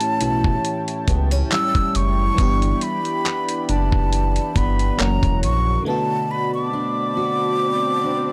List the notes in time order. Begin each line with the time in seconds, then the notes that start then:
Already playing: A2 E3 A3 C#4 E4 G4 C#5 G5 A5
0.01 closed hi-hat
0.21 B1 E4, closed hi-hat
0.44 kick
0.65 closed hi-hat
0.88 closed hi-hat
1.08 C#2 B3, kick, closed hi-hat
1.31 C#4, closed hi-hat
1.51 G3 C#4 E4 E6, clap, closed hi-hat
1.75 kick, closed hi-hat
1.95 F#1 C#6, closed hi-hat
2.35 G1 E3 B3 D5 B5, kick, closed hi-hat
2.40 D4 G4
2.62 closed hi-hat
2.81 B5, closed hi-hat
3.05 closed hi-hat
3.25 B3, clap, closed hi-hat
3.49 closed hi-hat
3.69 F#1 D4 A5, closed hi-hat
3.92 kick
4.13 closed hi-hat
4.36 closed hi-hat
4.56 G1 B3 B5, kick, closed hi-hat
4.79 closed hi-hat
4.97 F#1 F#2 E3 A#3 C#4 F#4 C#5 F#5 A#5, clap, closed hi-hat
5.23 E1, kick, closed hi-hat
5.43 A#1 C#6, closed hi-hat
5.82 B2 D3 A3 F#4 D5 A5 B5, swell
5.87 B3 F#4 A5
6.31 B5
6.54 D6
6.73 D4
7.17 F#4
8.04 D4